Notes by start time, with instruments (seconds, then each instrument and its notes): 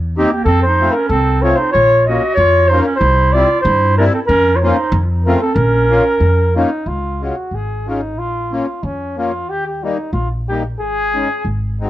Already playing: upright bass E2
0.18 clarinet A#3, accordion C4 D#4 G4, flugelhorn G4
0.32 clarinet A#3, flugelhorn G4
0.44 upright bass F2, clarinet C4, flugelhorn A4
0.63 flugelhorn C5
0.67 clarinet D#4
0.81 accordion A3 C4 F4
0.91 flugelhorn A#4
0.97 clarinet C#4
1.08 upright bass C2, clarinet C4, flugelhorn A4
1.42 accordion A3 C4 F4, clarinet F4, flugelhorn C#5
1.56 clarinet D#4, flugelhorn C5
1.71 upright bass A#1, clarinet F4, flugelhorn C#5
2.06 accordion A#3 C#4 F4, clarinet F#4, flugelhorn D#5
2.34 upright bass F2, flugelhorn C#5
2.38 clarinet F4
2.68 clarinet D#4, flugelhorn C5
2.73 accordion A#3 C#4 F4
2.82 clarinet C#4, flugelhorn A#4
2.96 clarinet E4, flugelhorn C5
3.01 upright bass C2
3.33 accordion G3 C4 E4, clarinet F4, flugelhorn D5
3.62 upright bass G2, clarinet E4, flugelhorn C5
3.98 accordion G3 C4 E4, clarinet D4, flugelhorn A#4
4.13 clarinet C4, flugelhorn A4
4.26 upright bass F2, clarinet C#4, flugelhorn A#4
4.56 clarinet F4, flugelhorn C#5
4.62 accordion A#3 C#4 F4, clarinet D#4, flugelhorn C5
4.92 upright bass F2
5.24 accordion A3 C4 F4, clarinet C#4, flugelhorn A#4
5.40 clarinet C4, flugelhorn A4
5.54 upright bass A#1, clarinet C#4, flugelhorn A#4
5.90 accordion A#3 C#4 F4
6.20 upright bass F2
6.56 accordion A#3 C#4 F4, flugelhorn D#4
6.86 upright bass C#2, flugelhorn F4
7.21 accordion G#3 C#4 F4, flugelhorn F#4
7.51 upright bass G#1, flugelhorn G#4
7.87 accordion G#3 C#4 F4, flugelhorn D#4
8.17 upright bass A#1, flugelhorn F4
8.52 accordion A#3 C#4 F4, flugelhorn F4
8.83 upright bass F2, flugelhorn C#4
9.17 accordion A#3 C#4 F4, flugelhorn F4
9.48 upright bass D#2, flugelhorn G4
9.66 flugelhorn G4
9.84 accordion G3 A#3 D#4, flugelhorn D#4
10.13 upright bass A#1, flugelhorn F4
10.49 accordion G3 A#3 D#4, flugelhorn G4
10.79 upright bass G#1, flugelhorn G#4
11.14 accordion G#3 C#4 D#4
11.45 upright bass G#1
11.81 accordion G#3 C4 D#4, flugelhorn F#4